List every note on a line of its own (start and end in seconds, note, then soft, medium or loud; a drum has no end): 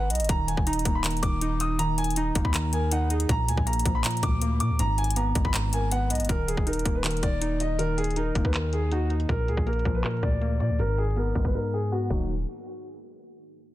0.00 0.12 G#1 loud
0.10 0.21 B1 loud
0.10 0.28 D#5 medium
0.10 closed hi-hat medium
0.10 open hi-hat medium
0.15 closed hi-hat medium
0.20 0.29 G#1 loud
0.20 closed hi-hat medium
0.24 closed hi-hat soft
0.29 0.56 D#1 loud
0.29 0.47 D#3 loud
0.29 0.47 A#5 loud
0.29 kick loud
0.29 closed hi-hat medium
0.48 1.03 D#3 medium
0.48 0.66 G#5 medium
0.48 closed hi-hat medium
0.57 0.84 D#1 loud
0.57 kick loud
0.67 1.41 D#4 medium
0.67 0.93 A#5 medium
0.67 closed hi-hat medium
0.73 closed hi-hat medium
0.79 closed hi-hat medium
0.85 1.21 D#1 loud
0.85 1.79 A#3 medium
0.85 kick loud
0.85 closed hi-hat medium
0.95 1.04 B5 medium
1.04 1.22 D#3 medium
1.04 1.22 A#5 medium
1.04 clap loud
1.04 closed hi-hat medium
1.10 closed hi-hat medium
1.17 closed hi-hat soft
1.23 2.31 D#1 loud
1.23 1.78 D#3 medium
1.23 1.58 D6 medium
1.23 kick loud
1.23 closed hi-hat medium
1.41 1.59 D#4 loud
1.41 closed hi-hat loud
1.60 2.16 D#4 medium
1.60 1.78 D#6 medium
1.60 closed hi-hat medium
1.79 1.97 D#3 loud
1.79 1.97 A#5 loud
1.79 closed hi-hat medium
1.98 2.53 D#3 medium
1.98 2.16 G#5 loud
1.98 closed hi-hat medium
2.04 closed hi-hat medium
2.10 closed hi-hat soft
2.16 2.91 D#4 loud
2.16 2.43 A#5 medium
2.16 closed hi-hat medium
2.35 2.44 D#1 loud
2.35 3.29 A#3 medium
2.35 kick loud
2.35 closed hi-hat medium
2.45 3.26 D#2 loud
2.45 2.54 B5 medium
2.45 kick medium
2.54 2.72 D#3 loud
2.54 2.72 A#5 medium
2.54 clap loud
2.54 closed hi-hat medium
2.73 3.29 D#3 medium
2.73 3.08 A#4 medium
2.73 2.91 G#5 medium
2.73 closed hi-hat medium
2.92 3.10 D#4 loud
2.92 3.10 F#5 medium
2.92 closed hi-hat loud
3.10 3.29 D#4 medium
3.10 3.28 G#4 medium
3.10 closed hi-hat medium
3.10 open hi-hat medium
3.20 closed hi-hat medium
3.29 3.50 A#1 loud
3.29 3.47 A#2 medium
3.29 3.48 A#5 loud
3.29 kick loud
3.29 closed hi-hat medium
3.48 3.57 D2 loud
3.48 4.03 A#2 medium
3.48 3.66 G#5 medium
3.48 closed hi-hat medium
3.57 3.84 A#1 loud
3.57 kick loud
3.67 4.41 A#3 medium
3.67 3.93 A#5 medium
3.67 closed hi-hat medium
3.73 closed hi-hat medium
3.79 closed hi-hat medium
3.86 4.04 A#1 loud
3.86 4.80 F3 medium
3.86 kick loud
3.86 closed hi-hat medium
3.95 4.04 B5 medium
4.04 4.22 A#2 loud
4.04 4.22 A#5 medium
4.04 clap loud
4.04 closed hi-hat medium
4.11 closed hi-hat medium
4.17 closed hi-hat soft
4.23 4.62 D2 loud
4.23 4.79 A#2 medium
4.23 4.58 D6 medium
4.23 kick loud
4.23 closed hi-hat medium
4.42 4.60 A#3 loud
4.42 closed hi-hat loud
4.60 4.71 A#2 loud
4.60 4.79 A#3 medium
4.60 4.78 D6 medium
4.60 closed hi-hat medium
4.70 4.79 D2 loud
4.79 5.33 G#1 loud
4.79 4.97 G#2 loud
4.79 4.97 A#5 loud
4.79 closed hi-hat medium
4.98 5.53 G#2 medium
4.98 5.16 G#5 loud
4.98 closed hi-hat soft
5.04 closed hi-hat medium
5.10 closed hi-hat medium
5.16 5.91 B3 medium
5.16 5.43 A#5 medium
5.16 closed hi-hat medium
5.35 5.44 G#1 loud
5.35 6.29 G#3 medium
5.35 kick loud
5.35 closed hi-hat medium
5.45 6.12 G#1 loud
5.45 5.54 B5 medium
5.45 kick medium
5.54 5.72 G#2 medium
5.54 5.72 A#5 medium
5.54 clap loud
5.54 closed hi-hat medium
5.73 6.29 G#2 medium
5.73 5.91 A#4 medium
5.73 5.91 G#5 medium
5.73 closed hi-hat medium
5.91 6.09 B3 medium
5.91 6.09 B4 medium
5.91 6.10 F#5 medium
5.91 closed hi-hat loud
6.10 6.21 B1 loud
6.10 6.29 B3 medium
6.10 6.28 D#5 medium
6.10 closed hi-hat medium
6.10 open hi-hat medium
6.20 6.29 G#1 loud
6.20 closed hi-hat medium
6.25 closed hi-hat soft
6.29 6.56 D#1 loud
6.29 6.47 D#3 medium
6.29 6.47 A#4 loud
6.29 kick loud
6.29 closed hi-hat medium
6.48 7.03 D#3 medium
6.48 6.66 G#4 medium
6.48 closed hi-hat medium
6.57 6.84 D#1 loud
6.57 kick loud
6.67 7.40 D#4 medium
6.67 6.93 A#4 medium
6.67 closed hi-hat medium
6.73 closed hi-hat medium
6.79 closed hi-hat soft
6.85 7.22 D#1 loud
6.85 7.79 A#3 medium
6.85 kick loud
6.85 closed hi-hat medium
6.95 7.04 B4 medium
7.04 7.22 D#3 medium
7.04 7.22 A#4 medium
7.04 clap loud
7.04 closed hi-hat medium
7.11 closed hi-hat medium
7.17 closed hi-hat soft
7.23 8.32 D#1 loud
7.23 7.78 D#3 medium
7.23 7.58 D5 medium
7.23 kick loud
7.23 closed hi-hat medium
7.41 7.59 D#4 loud
7.41 closed hi-hat loud
7.60 8.16 D#4 medium
7.60 7.78 D#5 medium
7.60 closed hi-hat medium
7.79 7.97 D#3 loud
7.79 7.97 A#4 loud
7.79 closed hi-hat medium
7.98 8.53 D#3 medium
7.98 8.16 G#4 medium
7.98 closed hi-hat medium
8.04 closed hi-hat medium
8.11 closed hi-hat soft
8.16 8.91 D#4 loud
8.16 8.43 A#4 medium
8.16 closed hi-hat medium
8.35 8.44 D#1 loud
8.35 9.29 A#3 medium
8.35 kick loud
8.35 closed hi-hat medium
8.45 9.26 D#2 loud
8.45 8.54 B4 medium
8.45 kick medium
8.54 8.72 D#3 medium
8.54 8.72 A#4 medium
8.54 clap loud
8.54 closed hi-hat medium
8.73 9.29 D#3 medium
8.73 8.91 G#4 medium
8.73 closed hi-hat medium
8.91 9.09 D#4 medium
8.91 9.10 F#4 medium
8.91 closed hi-hat loud
9.10 9.29 D#4 medium
9.10 closed hi-hat soft
9.10 open hi-hat medium
9.20 closed hi-hat medium
9.29 9.49 A#1 loud
9.29 9.46 A#2 loud
9.29 9.48 A#4 loud
9.29 kick loud
9.29 closed hi-hat medium
9.48 9.57 D2 loud
9.48 10.03 A#2 medium
9.48 9.66 G#4 medium
9.48 closed hi-hat medium
9.57 9.84 A#1 loud
9.57 kick loud
9.66 10.41 A#3 medium
9.66 9.93 A#4 medium
9.66 closed hi-hat medium
9.73 closed hi-hat medium
9.79 closed hi-hat soft
9.85 10.03 A#1 loud
9.85 10.80 F3 medium
9.85 kick loud
9.85 closed hi-hat medium
9.95 10.04 B4 medium
10.04 10.22 A#2 medium
10.04 10.22 A#4 medium
10.04 clap loud
10.04 closed hi-hat medium
10.11 closed hi-hat medium
10.17 closed hi-hat soft
10.23 10.62 D2 loud
10.23 10.79 A#2 medium
10.23 10.58 D5 medium
10.23 kick loud
10.23 closed hi-hat medium
10.42 10.59 A#3 loud
10.42 closed hi-hat loud
10.60 10.71 A#2 loud
10.60 10.79 A#3 medium
10.60 10.78 D5 medium
10.60 closed hi-hat medium
10.70 10.79 D2 loud
10.79 11.33 G#1 loud
10.79 10.97 G#2 loud
10.79 10.97 A#4 loud
10.79 closed hi-hat medium
10.98 11.53 G#2 medium
10.98 11.16 G#4 medium
10.98 closed hi-hat soft
11.04 closed hi-hat medium
11.10 closed hi-hat medium
11.16 11.91 B3 medium
11.16 11.43 A#4 medium
11.16 closed hi-hat medium
11.35 11.44 G#1 loud
11.35 12.11 G#3 medium
11.35 kick loud
11.35 closed hi-hat medium
11.45 11.54 G#1 loud
11.45 11.54 B4 medium
11.45 kick medium
11.54 11.72 G#2 medium
11.54 11.72 A#4 medium
11.73 12.11 G#2 medium
11.73 11.91 G#4 medium
11.92 12.11 B3 medium
11.92 12.09 F#4 medium
12.10 12.45 D#1 loud
12.10 12.28 D#3 medium
12.10 12.28 F#3 medium
12.10 12.28 A#3 medium
12.10 12.28 D#4 loud
12.10 12.28 F#4 medium
12.10 kick loud
12.10 crash medium